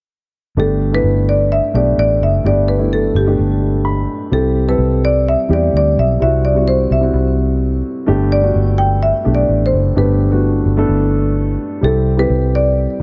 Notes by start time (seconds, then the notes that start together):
0.57 G1 G2 A3 B3 D4 G4 A4
0.92 A3 B3 D4 E4 B4
1.03 G1
1.29 D5
1.52 E5
1.74 B1 A3 B3 D4 G4 D5
1.98 A1 D5
2.21 F#1 E5
2.44 G1 G2 A3 B3 D4 G4 D5
2.68 B4
2.78 A3 B3 D4 E4
2.93 A4
3.15 G1 G4
3.26 A3 B3 D4 G4
3.39 G1
3.85 B5
4.31 C2 C3 G3 C4 E4 G4 A4
4.67 G3 C4 E4 A4 B4
4.78 C2
5.05 D5
5.29 E5
5.49 E2 G3 C4 E4 G4
5.53 D5
5.73 D2 D5
5.97 B1 E5
6.20 C2 C3 G3 C4 E4 F#4 E5
6.45 D5
6.55 G3 C4 E4 F#4
6.68 C5
6.91 C2 E5
7.01 G3 C4 E4 F#4
7.13 C2
8.06 G1 G2 A3 B3 D4 G4
8.32 D5
8.42 A3 B3 D4 F#4
8.55 G1
8.78 G5
9.03 E5
9.24 B1 A3 B3 D4 G4
9.35 D5
9.49 A1
9.66 C5
9.73 F#1
9.96 G1 G2 A3 B3 D4 G4 B4
10.30 A3 B3 D4 F#4
10.65 G1
10.77 A3 B3 D4 A4
10.89 G1
11.81 C2 C3 G3 C4 E4 G4 A4
12.17 G3 C4 E4 G4 B4
12.30 C2
12.55 D5